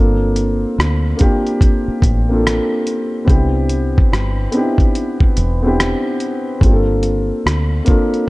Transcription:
0.00 0.64 G1 medium
0.00 1.05 A#3 medium
0.00 1.06 C4 medium
0.00 1.06 D4 medium
0.00 1.07 F4 medium
0.00 1.07 A4 medium
0.36 closed hi-hat medium
0.78 1.13 D2 medium
0.78 cross-stick loud
0.78 closed hi-hat medium
1.17 2.10 A#3 medium
1.17 2.10 C4 medium
1.17 2.11 D4 medium
1.17 2.11 F4 medium
1.17 closed hi-hat medium
1.21 2.12 G4 loud
1.21 kick medium
1.47 closed hi-hat soft
1.61 kick medium
1.61 closed hi-hat medium
1.88 muted fingered electric bass stroke medium
2.02 2.59 A1 medium
2.02 kick medium
2.02 closed hi-hat medium
2.29 3.17 A#3 medium
2.29 3.18 C4 medium
2.29 3.18 D4 medium
2.29 3.19 F4 medium
2.34 3.20 A4 medium
2.47 cross-stick medium
2.47 closed hi-hat medium
2.87 closed hi-hat medium
3.25 3.97 C2 loud
3.25 4.38 B3 medium
3.25 4.39 C4 medium
3.25 4.40 D4 medium
3.25 4.40 E4 medium
3.25 kick loud
3.29 4.41 G4 medium
3.29 closed hi-hat medium
3.69 closed hi-hat medium
3.98 kick medium
4.13 4.47 G1 loud
4.13 cross-stick loud
4.13 closed hi-hat medium
4.52 5.44 B3 medium
4.52 5.44 C4 medium
4.52 5.45 D4 medium
4.52 closed hi-hat medium
4.56 4.62 D#4 medium
4.56 5.46 G4 medium
4.62 5.49 E4 medium
4.78 kick medium
4.78 closed hi-hat soft
4.95 closed hi-hat medium
5.20 muted fingered electric bass stroke medium
5.20 kick medium
5.37 5.93 E1 medium
5.37 closed hi-hat medium
5.62 6.51 B3 medium
5.62 6.51 C4 medium
5.62 6.52 D4 medium
5.62 6.52 E4 medium
5.67 6.53 G4 medium
5.80 cross-stick loud
5.80 closed hi-hat medium
6.20 closed hi-hat medium
6.60 7.31 G1 medium
6.60 7.73 A#3 medium
6.60 7.73 C4 medium
6.60 7.74 D4 medium
6.60 7.75 F4 medium
6.60 kick loud
6.60 closed hi-hat medium
6.66 6.72 G4 medium
6.72 7.79 A4 medium
7.03 closed hi-hat medium
7.46 7.80 D2 medium
7.46 cross-stick loud
7.46 closed hi-hat medium
7.85 8.29 A#3 medium
7.85 8.29 C4 medium
7.85 8.29 D4 medium
7.85 8.29 F4 medium
7.85 kick medium
7.85 closed hi-hat medium
7.90 8.29 A4 medium
8.14 closed hi-hat soft

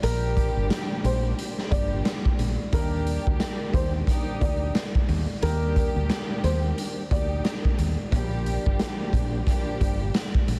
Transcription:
0.01 0.47 A#1 loud
0.01 1.60 F3 loud
0.01 1.60 G3 loud
0.01 1.60 A#3 loud
0.01 1.60 D4 medium
0.01 1.60 G4 loud
0.01 0.67 A#4 loud
0.01 closed hi-hat medium
0.37 kick medium
0.37 closed hi-hat medium
0.57 0.68 G1 medium
0.70 snare loud
0.70 closed hi-hat medium
1.04 1.32 A#1 medium
1.04 1.23 C5 medium
1.04 closed hi-hat medium
1.39 closed hi-hat medium
1.58 snare soft
1.70 1.99 G1 medium
1.70 2.50 F3 loud
1.70 2.50 G3 medium
1.70 2.51 A#3 medium
1.70 2.51 D4 medium
1.70 2.51 G4 loud
1.70 2.68 D5 medium
1.70 kick loud
1.70 closed hi-hat medium
2.05 snare loud
2.05 closed hi-hat medium
2.25 kick medium
2.39 2.55 A#1 medium
2.39 closed hi-hat medium
2.73 3.17 D#2 loud
2.73 3.99 D#3 loud
2.73 4.00 G3 medium
2.73 4.00 A#3 medium
2.73 4.00 D4 loud
2.73 4.00 G4 loud
2.73 3.37 A#4 loud
2.73 kick loud
2.73 closed hi-hat medium
3.07 closed hi-hat medium
3.27 3.38 D2 medium
3.27 kick medium
3.40 snare loud
3.40 closed hi-hat medium
3.74 4.02 D#2 loud
3.74 3.92 C5 medium
3.74 kick medium
3.74 closed hi-hat medium
4.07 5.03 G3 medium
4.07 5.03 A#3 medium
4.07 5.03 D4 medium
4.07 5.02 D#4 loud
4.07 5.03 G4 loud
4.07 kick medium
4.07 closed hi-hat medium
4.41 4.69 D2 medium
4.41 5.38 D5 medium
4.41 kick loud
4.41 closed hi-hat medium
4.75 snare loud
4.75 closed hi-hat medium
4.95 kick medium
5.09 5.25 D#2 medium
5.09 open hi-hat medium
5.41 5.87 D#2 loud
5.41 6.99 D#3 loud
5.41 7.00 G3 medium
5.41 7.00 A#3 loud
5.41 7.00 D4 medium
5.41 7.00 G4 loud
5.41 6.06 A#4 loud
5.41 closed hi-hat medium
5.76 kick medium
5.76 closed hi-hat medium
5.96 6.07 D2 medium
6.10 snare loud
6.10 closed hi-hat medium
6.44 6.71 D#2 medium
6.44 6.62 C5 medium
6.44 closed hi-hat medium
6.78 closed hi-hat medium
7.11 7.39 D2 medium
7.11 7.90 G3 medium
7.11 7.91 A#3 loud
7.11 7.91 D4 medium
7.11 7.90 D#4 medium
7.11 7.91 G4 loud
7.11 8.09 D5 medium
7.11 kick loud
7.11 closed hi-hat medium
7.45 snare loud
7.45 closed hi-hat medium
7.65 kick medium
7.78 7.95 D#2 medium
7.78 closed hi-hat medium
8.12 8.56 A#1 loud
8.12 9.38 F3 loud
8.12 9.38 G3 loud
8.12 9.38 A#3 loud
8.12 9.38 D4 medium
8.12 9.38 G4 loud
8.12 kick loud
8.12 closed hi-hat medium
8.46 closed hi-hat medium
8.66 8.77 G1 medium
8.66 kick medium
8.79 snare loud
8.79 closed hi-hat medium
9.13 9.41 A#1 medium
9.13 kick medium
9.13 closed hi-hat medium
9.46 10.41 F3 loud
9.46 10.41 G3 loud
9.46 10.41 A#3 medium
9.46 10.41 D4 loud
9.46 10.41 G4 loud
9.46 kick loud
9.46 closed hi-hat medium
9.81 10.09 G1 medium
9.81 kick loud
9.81 closed hi-hat medium
10.14 snare loud
10.14 closed hi-hat medium
10.35 kick loud
10.48 10.59 A#1 medium
10.48 closed hi-hat medium

